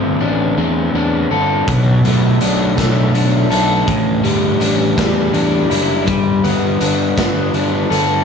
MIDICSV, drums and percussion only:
0, 0, Header, 1, 2, 480
1, 0, Start_track
1, 0, Tempo, 733317
1, 1097, Time_signature, 6, 3, 24, 8
1, 5394, End_track
2, 0, Start_track
2, 0, Title_t, "Drums"
2, 1098, Note_on_c, 9, 36, 99
2, 1098, Note_on_c, 9, 42, 89
2, 1164, Note_off_c, 9, 36, 0
2, 1164, Note_off_c, 9, 42, 0
2, 1341, Note_on_c, 9, 42, 61
2, 1406, Note_off_c, 9, 42, 0
2, 1576, Note_on_c, 9, 42, 64
2, 1642, Note_off_c, 9, 42, 0
2, 1820, Note_on_c, 9, 36, 81
2, 1820, Note_on_c, 9, 42, 95
2, 1828, Note_on_c, 9, 38, 105
2, 1886, Note_off_c, 9, 36, 0
2, 1886, Note_off_c, 9, 42, 0
2, 1894, Note_off_c, 9, 38, 0
2, 2061, Note_on_c, 9, 42, 68
2, 2127, Note_off_c, 9, 42, 0
2, 2301, Note_on_c, 9, 42, 76
2, 2367, Note_off_c, 9, 42, 0
2, 2539, Note_on_c, 9, 36, 109
2, 2539, Note_on_c, 9, 42, 85
2, 2604, Note_off_c, 9, 36, 0
2, 2604, Note_off_c, 9, 42, 0
2, 2780, Note_on_c, 9, 42, 61
2, 2845, Note_off_c, 9, 42, 0
2, 3018, Note_on_c, 9, 42, 65
2, 3084, Note_off_c, 9, 42, 0
2, 3259, Note_on_c, 9, 36, 81
2, 3259, Note_on_c, 9, 42, 91
2, 3266, Note_on_c, 9, 38, 116
2, 3324, Note_off_c, 9, 36, 0
2, 3324, Note_off_c, 9, 42, 0
2, 3332, Note_off_c, 9, 38, 0
2, 3498, Note_on_c, 9, 42, 65
2, 3563, Note_off_c, 9, 42, 0
2, 3738, Note_on_c, 9, 42, 66
2, 3803, Note_off_c, 9, 42, 0
2, 3974, Note_on_c, 9, 42, 83
2, 3978, Note_on_c, 9, 36, 107
2, 4039, Note_off_c, 9, 42, 0
2, 4043, Note_off_c, 9, 36, 0
2, 4218, Note_on_c, 9, 42, 61
2, 4284, Note_off_c, 9, 42, 0
2, 4455, Note_on_c, 9, 42, 60
2, 4521, Note_off_c, 9, 42, 0
2, 4696, Note_on_c, 9, 42, 91
2, 4697, Note_on_c, 9, 36, 87
2, 4704, Note_on_c, 9, 38, 127
2, 4762, Note_off_c, 9, 42, 0
2, 4763, Note_off_c, 9, 36, 0
2, 4769, Note_off_c, 9, 38, 0
2, 4936, Note_on_c, 9, 42, 66
2, 5002, Note_off_c, 9, 42, 0
2, 5183, Note_on_c, 9, 42, 71
2, 5248, Note_off_c, 9, 42, 0
2, 5394, End_track
0, 0, End_of_file